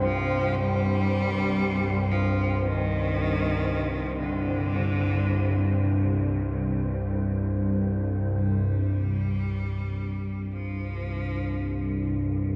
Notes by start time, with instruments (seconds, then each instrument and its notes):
Already playing: synth drone C2 G2, synth texture C4 C5
0.02 cello F3
0.56 cello G3
2.11 cello F3
2.65 cello D#3
4.20 cello D3
8.39 synth drone G2, cello G3
8.43 synth drone C2
10.52 cello F3